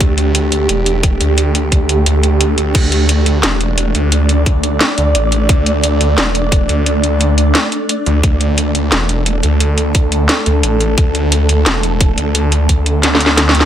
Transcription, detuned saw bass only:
0.01 0.51 D2 medium
0.52 0.68 D2 medium
0.69 1.19 E1 medium
1.20 2.05 D2 medium
2.06 2.56 D2 medium
2.58 2.73 D2 loud
2.75 3.25 D2 loud
3.26 3.42 D2 medium
3.43 3.93 E1 medium
3.95 4.79 D2 loud
4.98 5.13 D2 loud
5.15 5.48 A1 loud
5.49 5.99 D2 medium
6.01 6.16 D2 medium
6.18 6.68 E1 medium
6.69 7.53 D2 medium
8.06 8.22 D2 medium
8.23 8.73 D2 medium
8.75 8.91 D2 loud
8.92 9.42 E1 medium
9.43 10.28 D2 medium
10.46 10.62 D2 loud
10.63 10.96 A1 medium
10.98 11.48 D2 medium
11.49 11.65 D2 loud
11.66 12.16 E1 medium
12.18 13.02 D2 medium
13.03 13.53 D2 medium
13.55 13.65 D2 medium

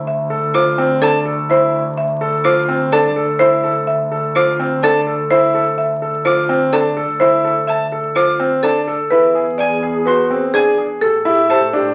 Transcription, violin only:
0.54 0.72 D6 medium
1.02 1.20 A5 medium
2.44 2.62 D6 medium
2.92 3.10 A5 medium
4.35 4.53 D6 medium
4.83 5.01 A5 medium
6.25 6.43 D6 medium
6.72 6.91 A5 medium
7.68 7.86 A5 medium
8.15 8.34 D6 medium
8.63 8.81 A5 medium
9.59 9.77 G#5 medium
10.06 10.24 C6 medium
10.54 10.72 G#5 medium
11.50 11.67 A5 medium

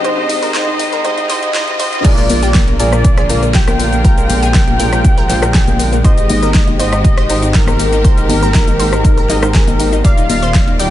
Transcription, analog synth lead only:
0.04 0.53 D#5 loud
0.55 1.03 D#5 loud
1.05 1.28 D#5 loud
1.29 1.53 D#5 loud
1.54 1.78 D#5 loud
1.80 2.03 D#5 loud
2.05 2.70 D5 loud
2.80 3.45 D5 loud
3.55 5.95 G5 loud
6.05 6.70 D#5 loud
6.79 7.45 D#5 loud
7.55 9.95 A#4 loud
10.05 10.70 F5 loud
10.80 10.90 G5 loud

